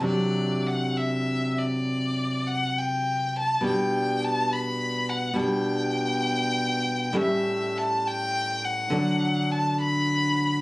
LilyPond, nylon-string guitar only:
\new Staff \with { instrumentName = "Nylon-string guitar" } { \clef bass \time 4/4 \key g \major \tempo 4 = 68 <c fis d'>1 | <b, g d'>2 <b, g d'>2 | <a, g cis'>2 <d fis d'>2 | }